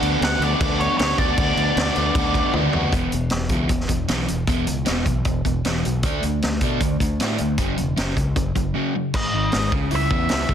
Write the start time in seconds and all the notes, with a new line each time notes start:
Already playing: D3 B3 D4 F#4
0.02 D2, crash
0.21 D2 D3 B3 D4 F#4 F#5, snare, crash
0.39 D2 D3 B3 D4, crash
0.43 F#4 D5
0.60 D2 D3 B3 D4 F#4, kick, crash
0.80 C#5, crash
0.98 D2 D3 B3 D4 F#4 C#5, snare, crash
1.18 D2 D3 B3 D4 F#4 D5, kick, crash
1.38 D2 D3 B3 D4 F#4, kick, crash
1.57 D2, crash
1.76 D2 D3 B3 D4 F#4, snare, crash
1.96 D2 D3 B3 D4 F#4, crash
2.15 D2 D3 B3 D4 F#4, kick, crash
2.34 kick, crash
2.53 D2 D3 B3 D4 F#4, high tom
2.73 D2 D3 B3 D4 F#4, floor tom
2.93 E1 E2 B2 E3, kick, closed hi-hat
3.12 E1 E2 B2, closed hi-hat
3.30 E1 E2 B2, snare, closed hi-hat
3.49 C#2 E2 B2 E3, kick, closed hi-hat
3.69 E1 E2 B2, kick, closed hi-hat
3.80 snare
3.89 E1 E2 B2, kick, closed hi-hat
4.08 B1 E2 B2 E3, snare, closed hi-hat
4.28 E1 E2 B2, closed hi-hat
4.47 E1 E2 B2 E3, kick, closed hi-hat
4.67 C#2 E2 B2, closed hi-hat
4.85 E1 E2 B2 E3, snare, closed hi-hat
5.06 B1 E2 B2, kick, closed hi-hat
5.25 E1 E2 B2, kick, closed hi-hat
5.45 E1 E2 B2, kick, closed hi-hat
5.65 E1 E2 B2 E3, snare, closed hi-hat
5.85 B1 E2 B2, closed hi-hat
6.03 D2 D3 A3 D4, kick, closed hi-hat
6.23 D2 D3 A3, closed hi-hat
6.42 D2 D3 A3, snare, closed hi-hat
6.61 B2 D3 A3 D4, kick, closed hi-hat
6.81 D2 D3 A3, kick, closed hi-hat
7.00 D2 D3 A3, kick, closed hi-hat
7.20 A2 D3 A3 D4, snare, closed hi-hat
7.38 D2 D3 A3, closed hi-hat
7.58 F#1 F#2 C#3 F#3, kick, closed hi-hat
7.77 E1 F#2 C#3, closed hi-hat
7.96 F#1 F#2 C#3 F#3, snare, closed hi-hat
8.16 C#2 F#2 C#3, kick, closed hi-hat
8.36 F#1 F#2 C#3, kick, closed hi-hat
8.56 F#1 F#2 C#3, kick, closed hi-hat
8.75 F#2 C#3 F#3
8.96 F#2 C#3
9.14 G#1 G#2 D#5, kick, crash
9.33 G#1 D#3
9.52 G#1 G#3, snare, open hi-hat
9.72 C#2 C#3, kick
9.91 C#2 E4, open hi-hat
9.96 E5
10.11 E2 B3, kick
10.29 C#2 E4, snare, open hi-hat
10.49 C#2 G#3, kick